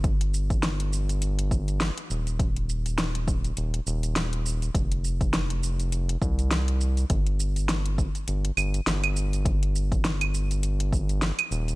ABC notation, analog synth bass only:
X:1
M:4/4
L:1/8
Q:"Swing 16ths" 1/4=102
K:Fmix
V:1 name="Analog synth bass" clef=bass
G,,,6 z E,,,- | E,,,4 E,,, E,,,3 | F,,,4- F,,, C,,3 | G,,,3 z G,,, G,,, G,,,2- |
G,,,6 z E,,, |]